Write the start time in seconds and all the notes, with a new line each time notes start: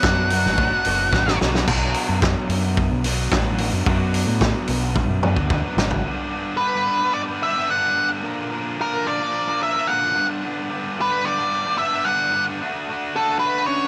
Already playing: F#5
0.03 F#2 B2 F#3 B3 D4 F#4, kick, snare
0.30 B2 F#3 B3 D4 F#4, open hi-hat
0.46 A1, snare
0.58 B2 F#3 B3 D4 F#4, kick
0.85 F#1 B2 F#3 B3 D4 F#4, open hi-hat
1.12 A1 B2 F#3 B3 D4 F#4, kick, snare
1.28 snare
1.41 B1 B2 F#3 B3 D4 F#4, snare
1.55 snare
1.68 B1 B2 F#3 B3, kick, crash
1.72 D4 F#4 B4
1.94 open hi-hat
2.09 F#2
2.22 kick, snare
2.49 F#2, open hi-hat
2.77 kick
2.92 B1
3.04 B3 D4 F#4 B4, open hi-hat
3.08 B2 F#3
3.32 A1 B2 F#3 B3 D4, kick, snare
3.36 F#4 B4
3.58 open hi-hat
3.73 F#2
3.86 F#2 B2 F#3 B3 D4, kick
3.91 F#4 B4
4.14 open hi-hat
4.27 A2
4.41 kick, snare
4.68 B1, open hi-hat
4.96 kick, high tom
5.08 F#2
5.23 B2 F#3 B3 D4 F#4 B4, mid tom
5.36 D2, kick
5.50 B2 F#3 B3 D4 F#4 B4, kick, mid tom
5.77 G#1, snare
5.91 floor tom
6.05 G2 D3 G3 B3 D4 G4
6.32 G3 B3 D4 G4
6.57 G2 D3 G3 B3 B4
6.62 D4 G4
6.74 G3 B3 D4 G4
6.87 G3 B3 D4 G4
7.01 G3 B3 D4 G4
7.13 D5
7.29 G3 B3 D4 G4
7.42 G3 B3 D4 G4 E5
7.56 G3 B3 D4 G4
7.68 G2 D3 G3 B3 D4 G4 F#5
7.96 G3 B3 D4 G4
8.10 G3 B3 D4 G4
8.22 A#2 D3 F3 A#3 D4 A#4
8.51 F3 A#3 D4 A#4
8.80 A#2 D3 F3 A#3 D4 A#4
8.94 F3 A#3 D4 A#4
9.07 F3 A#3 D4 A#4 D5
9.21 F3 A#3 D4 A#4
9.48 F3 A#3 D4 A#4
9.61 F3 A#3 D4 A#4 E5
9.74 F3 A#3 D4 A#4
9.87 A#2 D3 F3 A#3 D4 A#4 F#5
10.15 G2 D3 G3 B3 D4 G4
10.28 G3 B3 D4 G4
10.42 G2 D3 G3 B3 D4 G4
10.69 G3 B3 D4 G4
10.97 G2 D3 G3 B3 D4 G4
11.01 B4
11.11 G3 B3 D4 G4
11.23 G3 B3 D4 G4 D5
11.38 G3 B3 D4 G4
11.66 G3 B3 D4 G4
11.78 G3 B3 D4 G4 E5
11.93 G3 B3 D4 G4
12.05 G2 D3 G3 B3 D4 G4 F#5
12.33 G3 B3 D4 G4
12.48 G3 B3 D4 G4
12.62 D3 A3 D4 F#4
12.88 D3 A3 D4 F#4
13.16 D3 A3 D4 F#4 A4
13.31 A3 D4 F#4
13.39 B4
13.44 D3 A3 D4 F#4
13.58 A3 D4 F#4
13.66 C#4 C#5